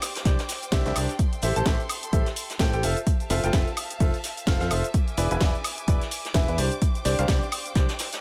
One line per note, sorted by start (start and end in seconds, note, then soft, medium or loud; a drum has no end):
0.00 1.17 C5 medium
0.00 2.79 G5 medium
0.00 1.15 D6 medium
0.00 snare loud
0.00 closed hi-hat medium
0.00 open hi-hat loud
0.00 high woodblock medium
0.00 shaker medium
0.16 snare loud
0.16 closed hi-hat medium
0.16 shaker soft
0.25 0.35 C2 loud
0.25 0.38 D4 medium
0.25 0.38 G4 medium
0.25 0.38 C5 medium
0.25 0.38 D5 medium
0.25 kick loud
0.25 snare loud
0.25 closed hi-hat medium
0.25 shaker soft
0.39 snare loud
0.39 closed hi-hat medium
0.39 closed hi-hat soft
0.39 shaker soft
0.49 snare medium
0.49 closed hi-hat medium
0.49 open hi-hat loud
0.49 shaker medium
0.62 closed hi-hat soft
0.62 shaker soft
0.72 0.83 C2 medium
0.72 0.84 D4 medium
0.72 0.84 G4 medium
0.72 0.84 C5 medium
0.72 0.84 E5 medium
0.72 kick loud
0.72 snare loud
0.72 closed hi-hat medium
0.72 shaker soft
0.85 0.94 C2 loud
0.85 0.94 D4 medium
0.85 0.94 G4 medium
0.85 0.94 C5 medium
0.85 0.94 E5 loud
0.85 snare soft
0.85 closed hi-hat soft
0.85 shaker soft
0.96 1.06 C2 loud
0.96 1.08 D4 medium
0.96 1.08 G4 medium
0.96 1.08 C5 medium
0.96 1.08 D5 medium
0.96 closed hi-hat medium
0.96 open hi-hat loud
0.96 high woodblock medium
0.96 shaker medium
1.09 snare soft
1.09 closed hi-hat soft
1.09 shaker soft
1.19 2.82 A4 medium
1.19 2.82 C6 medium
1.19 kick loud
1.19 closed hi-hat medium
1.19 shaker soft
1.33 closed hi-hat soft
1.33 shaker soft
1.41 1.54 A1 loud
1.41 1.53 G4 medium
1.41 1.53 A4 medium
1.41 1.53 C5 medium
1.41 1.53 E5 loud
1.41 closed hi-hat medium
1.41 open hi-hat loud
1.41 shaker medium
1.56 1.64 A1 loud
1.56 1.65 G4 medium
1.56 1.65 A4 medium
1.56 1.65 C5 medium
1.56 1.65 A5 loud
1.56 closed hi-hat medium
1.56 shaker soft
1.66 1.76 A1 loud
1.66 1.79 G4 medium
1.66 1.79 A4 medium
1.66 1.79 C5 medium
1.66 1.79 E5 loud
1.66 kick loud
1.66 snare loud
1.66 closed hi-hat medium
1.66 shaker soft
1.80 shaker soft
1.89 closed hi-hat medium
1.89 open hi-hat loud
1.89 high woodblock medium
1.89 shaker medium
2.03 closed hi-hat medium
2.03 shaker soft
2.13 2.23 A1 medium
2.13 2.26 G4 medium
2.13 2.26 A4 medium
2.13 2.26 C5 medium
2.13 2.26 E5 medium
2.13 kick loud
2.13 closed hi-hat medium
2.13 shaker soft
2.26 snare soft
2.26 closed hi-hat soft
2.26 shaker soft
2.36 closed hi-hat medium
2.36 open hi-hat loud
2.36 shaker medium
2.50 snare medium
2.50 closed hi-hat soft
2.50 shaker soft
2.59 2.71 A2 medium
2.59 2.71 G4 medium
2.59 2.71 A4 medium
2.59 2.71 C5 medium
2.59 2.71 G5 loud
2.59 kick loud
2.59 snare loud
2.59 closed hi-hat medium
2.59 shaker soft
2.73 2.81 A1 loud
2.73 2.82 G4 medium
2.73 2.82 A4 medium
2.73 2.82 C5 medium
2.73 2.82 G5 loud
2.73 closed hi-hat soft
2.73 shaker soft
2.83 2.93 F1 loud
2.83 2.96 F4 medium
2.83 2.96 A4 medium
2.83 2.96 C5 medium
2.83 2.96 E5 medium
2.83 6.55 E5 medium
2.83 4.92 F5 medium
2.83 4.92 A5 medium
2.83 closed hi-hat medium
2.83 open hi-hat loud
2.83 shaker medium
2.97 closed hi-hat soft
2.97 shaker soft
3.07 kick loud
3.07 closed hi-hat medium
3.07 shaker soft
3.20 closed hi-hat soft
3.20 shaker soft
3.30 3.41 F1 loud
3.30 3.40 F4 medium
3.30 3.40 A4 medium
3.30 3.40 C5 medium
3.30 3.40 E5 medium
3.30 snare soft
3.30 closed hi-hat medium
3.30 open hi-hat loud
3.30 shaker medium
3.44 3.52 F1 loud
3.44 3.52 F4 medium
3.44 3.52 A4 medium
3.44 3.52 C5 medium
3.44 3.52 G5 loud
3.44 closed hi-hat medium
3.44 shaker soft
3.53 3.66 F4 medium
3.53 3.66 A4 medium
3.53 3.66 C5 medium
3.53 3.66 E5 loud
3.53 kick loud
3.53 snare loud
3.53 closed hi-hat medium
3.53 shaker soft
3.67 shaker soft
3.77 closed hi-hat medium
3.77 open hi-hat loud
3.77 high woodblock medium
3.77 shaker medium
3.90 closed hi-hat medium
3.90 shaker soft
4.00 4.10 F1 loud
4.00 4.13 F4 medium
4.00 4.13 A4 medium
4.00 4.13 C5 medium
4.00 4.13 E5 medium
4.00 kick loud
4.00 closed hi-hat medium
4.00 open hi-hat medium
4.00 shaker soft
4.14 closed hi-hat soft
4.14 shaker soft
4.24 snare medium
4.24 closed hi-hat medium
4.24 open hi-hat loud
4.24 shaker medium
4.37 closed hi-hat soft
4.37 shaker soft
4.47 4.58 F1 medium
4.47 4.59 F4 medium
4.47 4.59 A4 medium
4.47 4.59 C5 medium
4.47 4.59 F5 loud
4.47 kick loud
4.47 snare loud
4.47 closed hi-hat medium
4.47 shaker soft
4.60 4.69 F2 loud
4.60 4.69 F4 medium
4.60 4.69 A4 medium
4.60 4.69 C5 medium
4.60 4.69 F5 loud
4.60 snare soft
4.60 closed hi-hat soft
4.60 shaker soft
4.71 4.81 F1 loud
4.71 4.83 F4 medium
4.71 4.83 A4 medium
4.71 4.83 C5 medium
4.71 4.83 E5 medium
4.71 closed hi-hat medium
4.71 open hi-hat loud
4.71 high woodblock medium
4.71 shaker medium
4.84 closed hi-hat soft
4.84 shaker soft
4.94 6.57 G#5 medium
4.94 8.21 D6 loud
4.94 kick loud
4.94 closed hi-hat medium
4.94 shaker soft
5.08 closed hi-hat soft
5.08 shaker soft
5.17 5.28 E1 loud
5.17 5.28 E4 medium
5.17 5.28 G#4 medium
5.17 5.28 B4 medium
5.17 5.28 D5 medium
5.17 closed hi-hat medium
5.17 open hi-hat loud
5.17 shaker medium
5.31 5.39 E1 loud
5.31 5.39 E4 medium
5.31 5.39 G#4 medium
5.31 5.39 B4 medium
5.31 5.40 G#5 loud
5.31 closed hi-hat medium
5.31 shaker soft
5.41 5.51 E1 loud
5.41 5.54 E4 medium
5.41 5.54 G#4 medium
5.41 5.54 B4 medium
5.41 5.54 D5 loud
5.41 kick loud
5.41 snare loud
5.41 closed hi-hat medium
5.41 closed hi-hat loud
5.41 shaker soft
5.55 shaker soft
5.64 closed hi-hat medium
5.64 open hi-hat loud
5.64 high woodblock medium
5.64 shaker medium
5.78 closed hi-hat medium
5.78 shaker soft
5.88 5.98 E1 loud
5.88 6.00 E4 medium
5.88 6.00 G#4 medium
5.88 6.00 B4 medium
5.88 6.00 D5 medium
5.88 kick loud
5.88 closed hi-hat medium
5.88 shaker soft
6.01 snare soft
6.01 closed hi-hat soft
6.01 shaker soft
6.11 closed hi-hat medium
6.11 open hi-hat loud
6.11 shaker medium
6.25 snare soft
6.25 closed hi-hat soft
6.25 shaker soft
6.34 6.46 E1 medium
6.34 6.46 E4 medium
6.34 6.46 G#4 medium
6.34 6.46 B4 medium
6.34 6.46 E5 loud
6.34 kick loud
6.34 snare loud
6.34 closed hi-hat medium
6.34 shaker soft
6.48 6.56 E2 loud
6.48 6.57 E4 medium
6.48 6.57 G#4 medium
6.48 6.57 B4 medium
6.48 6.57 E5 loud
6.48 closed hi-hat soft
6.48 shaker soft
6.58 6.68 C2 loud
6.58 6.71 D4 medium
6.58 6.71 G4 medium
6.58 8.21 C5 medium
6.58 6.71 C5 medium
6.58 6.71 D5 medium
6.58 8.21 G5 medium
6.58 closed hi-hat medium
6.58 open hi-hat loud
6.58 shaker medium
6.72 closed hi-hat soft
6.72 shaker soft
6.82 kick loud
6.82 closed hi-hat medium
6.82 shaker soft
6.95 closed hi-hat soft
6.95 shaker soft
7.05 7.16 C2 loud
7.05 7.15 D4 medium
7.05 7.15 G4 medium
7.05 7.15 C5 medium
7.05 7.15 D5 medium
7.05 snare soft
7.05 closed hi-hat medium
7.05 open hi-hat loud
7.05 shaker medium
7.19 7.27 C2 medium
7.19 7.27 D4 medium
7.19 7.27 G4 medium
7.19 7.27 C5 medium
7.19 7.27 F5 loud
7.19 closed hi-hat medium
7.19 shaker soft
7.28 7.41 D4 medium
7.28 7.41 G4 medium
7.28 7.41 C5 medium
7.28 7.41 D5 loud
7.28 kick loud
7.28 snare loud
7.28 closed hi-hat medium
7.28 shaker soft
7.43 shaker soft
7.52 closed hi-hat medium
7.52 open hi-hat loud
7.52 high woodblock medium
7.52 shaker medium
7.66 closed hi-hat soft
7.66 shaker soft
7.75 7.85 C2 loud
7.75 7.88 D4 medium
7.75 7.88 G4 medium
7.75 7.88 C5 medium
7.75 7.88 D5 medium
7.75 kick loud
7.75 snare loud
7.75 closed hi-hat medium
7.75 shaker soft
7.88 snare loud
7.88 closed hi-hat medium
7.88 closed hi-hat soft
7.88 shaker soft
7.99 snare loud
7.99 closed hi-hat medium
7.99 open hi-hat loud
7.99 shaker medium
8.12 snare loud
8.12 closed hi-hat medium
8.12 closed hi-hat soft
8.12 shaker soft